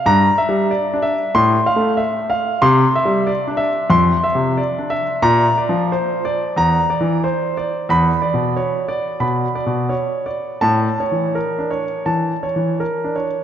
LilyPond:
<<
  \new Staff \with { instrumentName = "Grand piano" } { \time 4/4 \key a \phrygian \tempo 4 = 90 bes''8 e''8 d''8 e''8 c'''8 f''8 e''8 f''8 | c'''8 e''8 d''8 e''8 c'''8 e''8 d''8 e''8 | bes''8 d''8 c''8 d''8 bes''8 d''8 c''8 d''8 | b''8 d''8 cis''8 d''8 b''8 d''8 cis''8 d''8 |
a''8 cis''8 bes'8 cis''8 a''8 cis''8 bes'8 cis''8 | }
  \new Staff \with { instrumentName = "Grand piano" } { \clef bass \time 4/4 \key a \phrygian \tuplet 3/2 { g,8 r8 g8 r8 d'8 r8 a,8 r8 a8 } r4 | \tuplet 3/2 { c8 r8 g8 r8 d'8 r8 f,8 r8 c8 r8 d'8 r8 } | \tuplet 3/2 { bes,8 r8 f8 } r4 \tuplet 3/2 { e,8 r8 e8 } r4 | \tuplet 3/2 { e,8 r8 b,8 } r4 \tuplet 3/2 { b,8 r8 b,8 } r4 |
\tuplet 3/2 { a,8 r8 e8 r8 d'8 r8 e8 r8 e8 r8 d'8 r8 } | }
>>